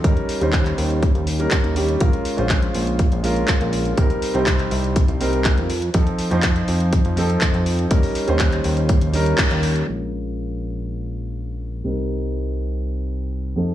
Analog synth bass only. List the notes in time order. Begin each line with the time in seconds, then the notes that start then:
0.04 D#2
0.41 D#2
0.78 D#2
1.15 D#2
1.64 D#2
2.01 A#1
2.38 A#1
2.75 A#1
3.12 A#1
3.61 A#1
3.98 C2
4.35 C2
4.71 C2
5.09 C2
5.58 F2
5.94 F2
6.31 F2
6.68 F2
7.05 F2
7.54 F2
7.91 D#2
8.28 D#2
8.65 D#2
9.02 D#2
9.51 D#2
9.88 A#1
11.85 C2
13.57 F2